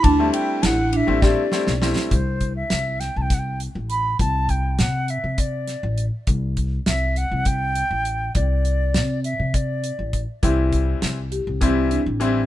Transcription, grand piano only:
X:1
M:7/8
L:1/16
Q:1/4=101
K:Clyd
V:1 name="Grand piano"
z [G,A,CE]4 z2 [G,A,CE] [G,A,CE] z [G,A,CE] z [G,A,CE]2 | z12 z2 | z12 z2 | z12 z2 |
z12 z2 | [E,G,CE]4- [E,G,CE] z3 [E,G,CE]2 z2 [E,G,CE] z |]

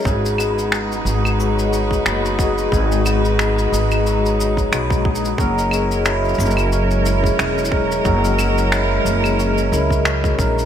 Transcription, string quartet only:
X:1
M:4/4
L:1/8
Q:"Swing 16ths" 1/4=90
K:G#m
V:1 name="String quartet"
[G,DFB]8- | [G,DFB]8 | [F,CEA]8- | [F,CEA]8 |]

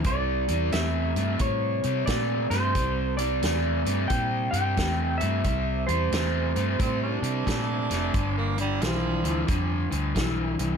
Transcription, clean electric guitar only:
X:1
M:4/4
L:1/8
Q:"Swing" 1/4=89
K:C
V:1 name="Clean electric guitar"
d2 e2 ^c2 d =c- | c d3 g g2 e- | e c4 z3 | z8 |]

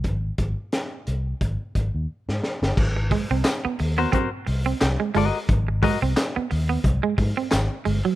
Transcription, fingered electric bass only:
X:1
M:4/4
L:1/16
Q:"Swing 16ths" 1/4=88
K:Abmix
V:1 name="Fingered electric bass" clef=bass
A,,,2 A,,, z3 C,,2 A,,, z A,,, E,, z A,, z =G,,, | A,,,3 C,, z2 E,,2 z2 C,,2 C,, z =G,,, z | A,,,3 C,, z2 E,,2 C,, z A,, z A,,, z =G,,, z |]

